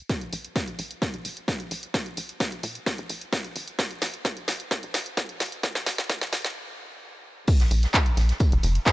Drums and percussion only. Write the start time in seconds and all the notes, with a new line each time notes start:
0.09 kick, snare, closed hi-hat
0.21 closed hi-hat
0.33 open hi-hat
0.45 closed hi-hat
0.56 kick, snare, closed hi-hat
0.68 closed hi-hat
0.79 open hi-hat
0.91 closed hi-hat
1.02 kick, snare, closed hi-hat
1.14 closed hi-hat
1.25 open hi-hat
1.37 closed hi-hat
1.48 kick, snare, closed hi-hat
1.60 closed hi-hat
1.71 open hi-hat
1.83 closed hi-hat
1.94 kick, snare, closed hi-hat
2.06 closed hi-hat
2.17 open hi-hat
2.29 closed hi-hat
2.40 kick, snare, closed hi-hat
2.52 closed hi-hat
2.63 open hi-hat
2.75 closed hi-hat
2.86 kick, snare, closed hi-hat
2.98 closed hi-hat
3.09 open hi-hat
3.21 closed hi-hat
3.33 kick, snare, closed hi-hat
3.45 closed hi-hat
3.56 open hi-hat
3.68 closed hi-hat
3.79 kick, snare, closed hi-hat
3.91 closed hi-hat
4.02 snare, open hi-hat
4.14 closed hi-hat
4.25 kick, snare, closed hi-hat
4.37 closed hi-hat
4.48 snare, open hi-hat
4.60 closed hi-hat
4.71 kick, snare, closed hi-hat
4.83 closed hi-hat
4.94 snare, open hi-hat
5.06 closed hi-hat
5.17 kick, snare, closed hi-hat
5.29 closed hi-hat
5.40 snare, open hi-hat
5.52 closed hi-hat
5.63 kick, snare, closed hi-hat
5.75 snare, closed hi-hat
5.86 snare, open hi-hat
5.98 snare, closed hi-hat
6.10 kick, snare, closed hi-hat
6.21 snare, closed hi-hat
6.33 snare, open hi-hat
6.45 snare, closed hi-hat
7.47 kick, closed hi-hat, crash, ride, tambourine
7.60 snare, closed hi-hat, ride
7.71 open hi-hat, ride, tambourine
7.83 snare, closed hi-hat, ride
7.93 kick, snare, clap, closed hi-hat, ride, tambourine
8.06 closed hi-hat, ride
8.17 snare, open hi-hat, ride, tambourine
8.29 snare, closed hi-hat, ride
8.40 kick, closed hi-hat, ride, tambourine
8.52 closed hi-hat, ride
8.63 open hi-hat, ride, tambourine
8.75 closed hi-hat, ride
8.86 kick, snare, clap, closed hi-hat, ride, tambourine